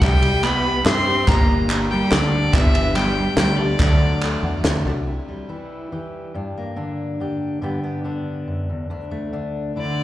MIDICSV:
0, 0, Header, 1, 8, 480
1, 0, Start_track
1, 0, Tempo, 421348
1, 18, Time_signature, 3, 2, 24, 8
1, 5778, Tempo, 426743
1, 11360, End_track
2, 0, Start_track
2, 0, Title_t, "Fiddle"
2, 0, Program_c, 0, 110
2, 23, Note_on_c, 0, 79, 109
2, 490, Note_on_c, 0, 83, 105
2, 507, Note_off_c, 0, 79, 0
2, 973, Note_off_c, 0, 83, 0
2, 984, Note_on_c, 0, 84, 114
2, 1454, Note_on_c, 0, 82, 117
2, 1471, Note_off_c, 0, 84, 0
2, 1933, Note_off_c, 0, 82, 0
2, 2166, Note_on_c, 0, 79, 91
2, 2409, Note_on_c, 0, 74, 92
2, 2426, Note_off_c, 0, 79, 0
2, 2877, Note_on_c, 0, 76, 109
2, 2894, Note_off_c, 0, 74, 0
2, 3365, Note_on_c, 0, 79, 91
2, 3382, Note_off_c, 0, 76, 0
2, 3840, Note_off_c, 0, 79, 0
2, 3847, Note_on_c, 0, 79, 89
2, 4069, Note_on_c, 0, 74, 91
2, 4086, Note_off_c, 0, 79, 0
2, 5283, Note_off_c, 0, 74, 0
2, 11071, Note_on_c, 0, 74, 65
2, 11360, Note_off_c, 0, 74, 0
2, 11360, End_track
3, 0, Start_track
3, 0, Title_t, "Upright piano"
3, 0, Program_c, 1, 0
3, 0, Control_c, 1, 64, 127
3, 33, Note_on_c, 1, 67, 55
3, 34, Note_on_c, 1, 36, 63
3, 35, Control_c, 1, 64, 0
3, 35, Note_on_c, 1, 64, 57
3, 36, Note_on_c, 1, 55, 67
3, 36, Note_on_c, 1, 76, 68
3, 38, Note_on_c, 1, 48, 68
3, 255, Control_c, 1, 64, 127
3, 1417, Note_off_c, 1, 36, 0
3, 1419, Note_off_c, 1, 48, 0
3, 1433, Note_off_c, 1, 67, 0
3, 1435, Note_off_c, 1, 55, 0
3, 1435, Note_off_c, 1, 64, 0
3, 1435, Note_off_c, 1, 76, 0
3, 1468, Control_c, 1, 64, 0
3, 1473, Note_on_c, 1, 31, 64
3, 1473, Note_on_c, 1, 58, 54
3, 1473, Note_on_c, 1, 62, 64
3, 1475, Note_on_c, 1, 70, 59
3, 1476, Note_on_c, 1, 43, 66
3, 1477, Note_on_c, 1, 74, 67
3, 1479, Note_on_c, 1, 55, 70
3, 1644, Control_c, 1, 64, 127
3, 2855, Note_off_c, 1, 31, 0
3, 2856, Note_off_c, 1, 43, 0
3, 2872, Note_off_c, 1, 58, 0
3, 2872, Note_off_c, 1, 62, 0
3, 2873, Note_off_c, 1, 70, 0
3, 2874, Note_off_c, 1, 74, 0
3, 2875, Note_off_c, 1, 55, 0
3, 2900, Note_on_c, 1, 71, 60
3, 2902, Note_on_c, 1, 62, 62
3, 2904, Note_on_c, 1, 59, 55
3, 2905, Control_c, 1, 64, 0
3, 2905, Note_on_c, 1, 31, 59
3, 2905, Note_on_c, 1, 43, 67
3, 2905, Note_on_c, 1, 55, 63
3, 2905, Note_on_c, 1, 74, 75
3, 3124, Control_c, 1, 64, 127
3, 4071, Note_off_c, 1, 71, 0
3, 4072, Note_off_c, 1, 62, 0
3, 4073, Note_off_c, 1, 55, 0
3, 4073, Note_off_c, 1, 59, 0
3, 4073, Note_off_c, 1, 74, 0
3, 4102, Note_on_c, 1, 76, 53
3, 4103, Note_on_c, 1, 62, 43
3, 4104, Note_on_c, 1, 59, 41
3, 4104, Note_on_c, 1, 71, 47
3, 4105, Note_on_c, 1, 55, 49
3, 4292, Note_off_c, 1, 31, 0
3, 4292, Note_off_c, 1, 43, 0
3, 4325, Note_off_c, 1, 62, 0
3, 4336, Note_off_c, 1, 76, 0
3, 4337, Note_off_c, 1, 59, 0
3, 4337, Note_off_c, 1, 71, 0
3, 4338, Note_off_c, 1, 55, 0
3, 4339, Note_on_c, 1, 54, 67
3, 4342, Note_on_c, 1, 50, 59
3, 4342, Note_on_c, 1, 62, 61
3, 4342, Note_on_c, 1, 74, 79
3, 4343, Note_on_c, 1, 38, 67
3, 4344, Control_c, 1, 64, 0
3, 4344, Note_on_c, 1, 57, 59
3, 4345, Note_on_c, 1, 69, 61
3, 4572, Control_c, 1, 64, 127
3, 5065, Note_on_c, 1, 78, 70
3, 5283, Note_off_c, 1, 78, 0
3, 5292, Note_on_c, 1, 76, 73
3, 5512, Note_off_c, 1, 54, 0
3, 5514, Note_off_c, 1, 74, 0
3, 5516, Note_off_c, 1, 69, 0
3, 5517, Note_off_c, 1, 57, 0
3, 5517, Note_off_c, 1, 62, 0
3, 5517, Note_off_c, 1, 76, 0
3, 5529, Note_on_c, 1, 54, 53
3, 5531, Note_on_c, 1, 74, 66
3, 5533, Note_on_c, 1, 69, 52
3, 5534, Note_on_c, 1, 62, 54
3, 5535, Note_on_c, 1, 57, 54
3, 5737, Note_off_c, 1, 38, 0
3, 5737, Note_off_c, 1, 50, 0
3, 5758, Note_off_c, 1, 74, 0
3, 5774, Note_off_c, 1, 54, 0
3, 5775, Note_off_c, 1, 69, 0
3, 5776, Note_off_c, 1, 57, 0
3, 5776, Note_off_c, 1, 62, 0
3, 5790, Control_c, 1, 64, 0
3, 11360, End_track
4, 0, Start_track
4, 0, Title_t, "Steel-string acoustic guitar"
4, 0, Program_c, 2, 25
4, 16, Note_on_c, 2, 48, 68
4, 26, Note_on_c, 2, 52, 82
4, 32, Note_on_c, 2, 55, 72
4, 39, Note_on_c, 2, 64, 89
4, 48, Note_on_c, 2, 67, 88
4, 473, Note_off_c, 2, 52, 0
4, 487, Note_on_c, 2, 52, 57
4, 496, Note_off_c, 2, 48, 0
4, 502, Note_off_c, 2, 55, 0
4, 506, Note_on_c, 2, 55, 66
4, 507, Note_off_c, 2, 64, 0
4, 520, Note_on_c, 2, 64, 68
4, 526, Note_off_c, 2, 67, 0
4, 530, Note_on_c, 2, 67, 68
4, 721, Note_off_c, 2, 67, 0
4, 731, Note_off_c, 2, 52, 0
4, 734, Note_on_c, 2, 67, 49
4, 741, Note_off_c, 2, 55, 0
4, 742, Note_off_c, 2, 64, 0
4, 756, Note_on_c, 2, 64, 45
4, 773, Note_on_c, 2, 55, 43
4, 966, Note_off_c, 2, 55, 0
4, 967, Note_on_c, 2, 52, 62
4, 975, Note_off_c, 2, 67, 0
4, 980, Note_off_c, 2, 64, 0
4, 980, Note_on_c, 2, 55, 55
4, 994, Note_on_c, 2, 64, 66
4, 1007, Note_on_c, 2, 67, 60
4, 1200, Note_off_c, 2, 67, 0
4, 1211, Note_off_c, 2, 52, 0
4, 1214, Note_on_c, 2, 67, 54
4, 1217, Note_off_c, 2, 55, 0
4, 1220, Note_off_c, 2, 64, 0
4, 1233, Note_on_c, 2, 64, 49
4, 1254, Note_on_c, 2, 55, 38
4, 1454, Note_off_c, 2, 67, 0
4, 1457, Note_off_c, 2, 55, 0
4, 1461, Note_on_c, 2, 43, 80
4, 1464, Note_off_c, 2, 64, 0
4, 1468, Note_on_c, 2, 50, 74
4, 1470, Note_on_c, 2, 55, 89
4, 1478, Note_on_c, 2, 58, 80
4, 1484, Note_on_c, 2, 62, 85
4, 1487, Note_on_c, 2, 67, 90
4, 1926, Note_off_c, 2, 55, 0
4, 1930, Note_on_c, 2, 55, 52
4, 1933, Note_off_c, 2, 58, 0
4, 1937, Note_off_c, 2, 43, 0
4, 1940, Note_off_c, 2, 50, 0
4, 1947, Note_on_c, 2, 58, 63
4, 1959, Note_off_c, 2, 62, 0
4, 1963, Note_on_c, 2, 62, 62
4, 1969, Note_off_c, 2, 67, 0
4, 1973, Note_on_c, 2, 67, 62
4, 2153, Note_off_c, 2, 67, 0
4, 2166, Note_on_c, 2, 67, 45
4, 2171, Note_off_c, 2, 55, 0
4, 2172, Note_off_c, 2, 62, 0
4, 2180, Note_off_c, 2, 58, 0
4, 2185, Note_on_c, 2, 62, 45
4, 2200, Note_on_c, 2, 58, 46
4, 2209, Note_on_c, 2, 55, 38
4, 2383, Note_off_c, 2, 55, 0
4, 2397, Note_on_c, 2, 55, 65
4, 2401, Note_off_c, 2, 58, 0
4, 2409, Note_off_c, 2, 67, 0
4, 2414, Note_on_c, 2, 58, 60
4, 2415, Note_off_c, 2, 62, 0
4, 2428, Note_on_c, 2, 62, 62
4, 2440, Note_on_c, 2, 67, 68
4, 2879, Note_on_c, 2, 43, 73
4, 2881, Note_off_c, 2, 55, 0
4, 2884, Note_on_c, 2, 50, 81
4, 2892, Note_off_c, 2, 58, 0
4, 2894, Note_off_c, 2, 67, 0
4, 2895, Note_on_c, 2, 55, 79
4, 2899, Note_off_c, 2, 62, 0
4, 2899, Note_on_c, 2, 59, 86
4, 2903, Note_on_c, 2, 62, 78
4, 2907, Note_on_c, 2, 67, 90
4, 3334, Note_off_c, 2, 55, 0
4, 3348, Note_on_c, 2, 55, 62
4, 3357, Note_off_c, 2, 59, 0
4, 3365, Note_off_c, 2, 43, 0
4, 3367, Note_off_c, 2, 50, 0
4, 3370, Note_on_c, 2, 59, 66
4, 3379, Note_off_c, 2, 67, 0
4, 3380, Note_off_c, 2, 62, 0
4, 3384, Note_on_c, 2, 62, 58
4, 3390, Note_on_c, 2, 67, 67
4, 3580, Note_off_c, 2, 67, 0
4, 3594, Note_on_c, 2, 67, 51
4, 3596, Note_off_c, 2, 62, 0
4, 3599, Note_off_c, 2, 55, 0
4, 3609, Note_on_c, 2, 62, 50
4, 3610, Note_off_c, 2, 59, 0
4, 3625, Note_on_c, 2, 59, 45
4, 3633, Note_on_c, 2, 55, 45
4, 3817, Note_off_c, 2, 55, 0
4, 3831, Note_on_c, 2, 55, 61
4, 3840, Note_off_c, 2, 59, 0
4, 3842, Note_off_c, 2, 67, 0
4, 3846, Note_off_c, 2, 62, 0
4, 3853, Note_on_c, 2, 59, 58
4, 3860, Note_on_c, 2, 62, 57
4, 3871, Note_on_c, 2, 67, 68
4, 4071, Note_off_c, 2, 67, 0
4, 4081, Note_off_c, 2, 55, 0
4, 4084, Note_on_c, 2, 67, 57
4, 4090, Note_off_c, 2, 62, 0
4, 4092, Note_off_c, 2, 59, 0
4, 4104, Note_on_c, 2, 62, 51
4, 4112, Note_on_c, 2, 59, 47
4, 4123, Note_on_c, 2, 55, 43
4, 4327, Note_off_c, 2, 67, 0
4, 4332, Note_off_c, 2, 55, 0
4, 4332, Note_on_c, 2, 50, 73
4, 4336, Note_on_c, 2, 54, 77
4, 4337, Note_off_c, 2, 62, 0
4, 4340, Note_off_c, 2, 59, 0
4, 4344, Note_on_c, 2, 57, 86
4, 4355, Note_on_c, 2, 62, 82
4, 4357, Note_on_c, 2, 66, 82
4, 4795, Note_off_c, 2, 54, 0
4, 4808, Note_off_c, 2, 57, 0
4, 4808, Note_on_c, 2, 54, 62
4, 4812, Note_off_c, 2, 50, 0
4, 4820, Note_off_c, 2, 62, 0
4, 4822, Note_on_c, 2, 57, 66
4, 4825, Note_off_c, 2, 66, 0
4, 4834, Note_on_c, 2, 62, 59
4, 4851, Note_on_c, 2, 66, 67
4, 5273, Note_off_c, 2, 54, 0
4, 5286, Note_on_c, 2, 54, 60
4, 5289, Note_off_c, 2, 57, 0
4, 5297, Note_off_c, 2, 62, 0
4, 5303, Note_on_c, 2, 57, 67
4, 5311, Note_on_c, 2, 62, 63
4, 5313, Note_off_c, 2, 66, 0
4, 5329, Note_on_c, 2, 66, 68
4, 5526, Note_off_c, 2, 66, 0
4, 5531, Note_off_c, 2, 54, 0
4, 5539, Note_off_c, 2, 57, 0
4, 5540, Note_on_c, 2, 66, 58
4, 5543, Note_off_c, 2, 62, 0
4, 5556, Note_on_c, 2, 62, 52
4, 5575, Note_on_c, 2, 57, 43
4, 5779, Note_off_c, 2, 66, 0
4, 5787, Note_off_c, 2, 62, 0
4, 5796, Note_off_c, 2, 57, 0
4, 11360, End_track
5, 0, Start_track
5, 0, Title_t, "Steel-string acoustic guitar"
5, 0, Program_c, 3, 25
5, 5767, Note_on_c, 3, 48, 46
5, 5775, Note_on_c, 3, 64, 37
5, 6016, Note_on_c, 3, 55, 36
5, 6239, Note_off_c, 3, 64, 0
5, 6244, Note_on_c, 3, 52, 39
5, 6250, Note_off_c, 3, 48, 0
5, 6252, Note_on_c, 3, 64, 39
5, 6720, Note_off_c, 3, 52, 0
5, 6732, Note_on_c, 3, 52, 38
5, 6736, Note_on_c, 3, 67, 37
5, 7183, Note_off_c, 3, 64, 0
5, 7184, Note_off_c, 3, 52, 0
5, 7210, Note_on_c, 3, 43, 49
5, 7218, Note_on_c, 3, 62, 39
5, 7465, Note_off_c, 3, 55, 0
5, 7470, Note_on_c, 3, 58, 36
5, 7678, Note_on_c, 3, 50, 41
5, 7679, Note_off_c, 3, 62, 0
5, 7683, Note_on_c, 3, 62, 43
5, 8160, Note_off_c, 3, 50, 0
5, 8173, Note_on_c, 3, 50, 44
5, 8180, Note_off_c, 3, 67, 0
5, 8184, Note_on_c, 3, 67, 42
5, 8625, Note_off_c, 3, 43, 0
5, 8630, Note_off_c, 3, 50, 0
5, 8631, Note_off_c, 3, 67, 0
5, 8634, Note_off_c, 3, 58, 0
5, 8637, Note_on_c, 3, 43, 47
5, 8643, Note_on_c, 3, 50, 44
5, 8655, Note_off_c, 3, 62, 0
5, 8656, Note_on_c, 3, 59, 44
5, 8659, Note_on_c, 3, 62, 42
5, 8664, Note_on_c, 3, 67, 47
5, 8872, Note_off_c, 3, 59, 0
5, 8886, Note_on_c, 3, 59, 39
5, 9106, Note_off_c, 3, 50, 0
5, 9119, Note_on_c, 3, 50, 43
5, 9124, Note_off_c, 3, 62, 0
5, 9128, Note_on_c, 3, 62, 39
5, 9603, Note_off_c, 3, 43, 0
5, 9608, Note_on_c, 3, 42, 41
5, 9849, Note_off_c, 3, 42, 0
5, 9854, Note_on_c, 3, 40, 43
5, 10064, Note_off_c, 3, 59, 0
5, 10065, Note_off_c, 3, 62, 0
5, 10073, Note_off_c, 3, 67, 0
5, 10079, Note_off_c, 3, 40, 0
5, 10083, Note_on_c, 3, 38, 53
5, 10091, Note_on_c, 3, 62, 43
5, 10324, Note_on_c, 3, 57, 42
5, 10553, Note_off_c, 3, 50, 0
5, 10555, Note_off_c, 3, 62, 0
5, 10565, Note_on_c, 3, 50, 46
5, 10572, Note_on_c, 3, 62, 46
5, 11036, Note_off_c, 3, 50, 0
5, 11049, Note_on_c, 3, 50, 41
5, 11061, Note_on_c, 3, 64, 42
5, 11360, Note_off_c, 3, 38, 0
5, 11360, Note_off_c, 3, 50, 0
5, 11360, Note_off_c, 3, 57, 0
5, 11360, Note_off_c, 3, 62, 0
5, 11360, Note_off_c, 3, 64, 0
5, 11360, End_track
6, 0, Start_track
6, 0, Title_t, "Cello"
6, 0, Program_c, 4, 42
6, 17, Note_on_c, 4, 55, 84
6, 496, Note_on_c, 4, 59, 86
6, 513, Note_off_c, 4, 55, 0
6, 960, Note_off_c, 4, 59, 0
6, 966, Note_on_c, 4, 60, 89
6, 1470, Note_on_c, 4, 58, 89
6, 1487, Note_off_c, 4, 60, 0
6, 1941, Note_off_c, 4, 58, 0
6, 2184, Note_on_c, 4, 55, 91
6, 2429, Note_on_c, 4, 50, 81
6, 2446, Note_off_c, 4, 55, 0
6, 2891, Note_on_c, 4, 52, 82
6, 2908, Note_off_c, 4, 50, 0
6, 3356, Note_on_c, 4, 55, 78
6, 3374, Note_off_c, 4, 52, 0
6, 3832, Note_off_c, 4, 55, 0
6, 3839, Note_on_c, 4, 55, 82
6, 4081, Note_on_c, 4, 50, 71
6, 4098, Note_off_c, 4, 55, 0
6, 5289, Note_off_c, 4, 50, 0
6, 11057, Note_on_c, 4, 50, 53
6, 11360, Note_off_c, 4, 50, 0
6, 11360, End_track
7, 0, Start_track
7, 0, Title_t, "Fingered electric bass"
7, 0, Program_c, 5, 33
7, 17, Note_on_c, 5, 36, 109
7, 851, Note_off_c, 5, 36, 0
7, 969, Note_on_c, 5, 43, 94
7, 1389, Note_off_c, 5, 43, 0
7, 1451, Note_on_c, 5, 31, 117
7, 2286, Note_off_c, 5, 31, 0
7, 2412, Note_on_c, 5, 38, 100
7, 2829, Note_off_c, 5, 38, 0
7, 2887, Note_on_c, 5, 31, 110
7, 3723, Note_off_c, 5, 31, 0
7, 3838, Note_on_c, 5, 38, 99
7, 4261, Note_off_c, 5, 38, 0
7, 4329, Note_on_c, 5, 38, 116
7, 4958, Note_off_c, 5, 38, 0
7, 5043, Note_on_c, 5, 40, 85
7, 5264, Note_off_c, 5, 40, 0
7, 5281, Note_on_c, 5, 38, 78
7, 5504, Note_off_c, 5, 38, 0
7, 5531, Note_on_c, 5, 36, 79
7, 5750, Note_off_c, 5, 36, 0
7, 11360, End_track
8, 0, Start_track
8, 0, Title_t, "Drums"
8, 19, Note_on_c, 9, 36, 116
8, 20, Note_on_c, 9, 51, 64
8, 31, Note_on_c, 9, 39, 82
8, 133, Note_off_c, 9, 36, 0
8, 134, Note_off_c, 9, 51, 0
8, 145, Note_off_c, 9, 39, 0
8, 256, Note_on_c, 9, 51, 63
8, 370, Note_off_c, 9, 51, 0
8, 502, Note_on_c, 9, 39, 100
8, 505, Note_on_c, 9, 51, 64
8, 616, Note_off_c, 9, 39, 0
8, 619, Note_off_c, 9, 51, 0
8, 974, Note_on_c, 9, 39, 110
8, 981, Note_on_c, 9, 38, 91
8, 981, Note_on_c, 9, 51, 55
8, 1088, Note_off_c, 9, 39, 0
8, 1095, Note_off_c, 9, 38, 0
8, 1095, Note_off_c, 9, 51, 0
8, 1456, Note_on_c, 9, 36, 116
8, 1458, Note_on_c, 9, 51, 59
8, 1460, Note_on_c, 9, 39, 98
8, 1570, Note_off_c, 9, 36, 0
8, 1572, Note_off_c, 9, 51, 0
8, 1574, Note_off_c, 9, 39, 0
8, 1933, Note_on_c, 9, 51, 73
8, 1936, Note_on_c, 9, 39, 107
8, 2047, Note_off_c, 9, 51, 0
8, 2050, Note_off_c, 9, 39, 0
8, 2409, Note_on_c, 9, 38, 82
8, 2409, Note_on_c, 9, 51, 66
8, 2410, Note_on_c, 9, 39, 114
8, 2523, Note_off_c, 9, 38, 0
8, 2523, Note_off_c, 9, 39, 0
8, 2523, Note_off_c, 9, 51, 0
8, 2885, Note_on_c, 9, 51, 66
8, 2889, Note_on_c, 9, 36, 114
8, 2898, Note_on_c, 9, 39, 103
8, 2999, Note_off_c, 9, 51, 0
8, 3003, Note_off_c, 9, 36, 0
8, 3012, Note_off_c, 9, 39, 0
8, 3131, Note_on_c, 9, 51, 72
8, 3245, Note_off_c, 9, 51, 0
8, 3365, Note_on_c, 9, 51, 72
8, 3375, Note_on_c, 9, 39, 98
8, 3479, Note_off_c, 9, 51, 0
8, 3489, Note_off_c, 9, 39, 0
8, 3837, Note_on_c, 9, 38, 90
8, 3837, Note_on_c, 9, 51, 61
8, 3848, Note_on_c, 9, 39, 104
8, 3951, Note_off_c, 9, 38, 0
8, 3951, Note_off_c, 9, 51, 0
8, 3962, Note_off_c, 9, 39, 0
8, 4325, Note_on_c, 9, 36, 118
8, 4326, Note_on_c, 9, 51, 59
8, 4329, Note_on_c, 9, 39, 90
8, 4439, Note_off_c, 9, 36, 0
8, 4440, Note_off_c, 9, 51, 0
8, 4443, Note_off_c, 9, 39, 0
8, 4448, Note_on_c, 9, 39, 30
8, 4562, Note_off_c, 9, 39, 0
8, 4801, Note_on_c, 9, 51, 64
8, 4813, Note_on_c, 9, 39, 92
8, 4915, Note_off_c, 9, 51, 0
8, 4927, Note_off_c, 9, 39, 0
8, 5291, Note_on_c, 9, 38, 82
8, 5291, Note_on_c, 9, 51, 56
8, 5296, Note_on_c, 9, 39, 86
8, 5405, Note_off_c, 9, 38, 0
8, 5405, Note_off_c, 9, 51, 0
8, 5410, Note_off_c, 9, 39, 0
8, 5542, Note_on_c, 9, 39, 30
8, 5656, Note_off_c, 9, 39, 0
8, 11360, End_track
0, 0, End_of_file